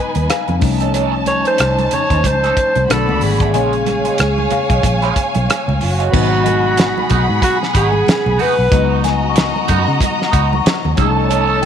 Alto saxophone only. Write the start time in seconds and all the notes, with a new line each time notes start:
Already playing: B4
1.28 C#5
1.47 C5
1.93 C#5
2.26 C5
2.92 A4
3.23 G#4
5.82 F#4
7.44 F#4
7.76 G#4
8.41 B4
11.01 A4